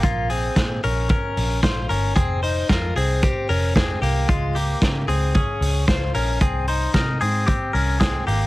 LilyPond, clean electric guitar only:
\new Staff \with { instrumentName = "Clean electric guitar" } { \time 4/4 \key aes \major \tempo 4 = 113 <bes f'>8 <c' aes'>4 <des' bes'>8 <des' bes'>4 <f' c''>8 <des' bes'>8 | <c' aes'>8 <ees' c''>8 <f' bes'>8 <c' aes'>8 <c' g'>8 <des' bes'>8 <c' aes'>8 <bes g'>8 | <aes f'>8 <bes g'>4 <c' aes'>8 <des' aes'>4 <f' c''>8 <des' bes'>8 | <c' aes'>8 <ees' c''>8 <ees' bes'>8 <c' aes'>8 <c' g'>8 <des' bes'>8 <c' aes'>8 <bes g'>8 | }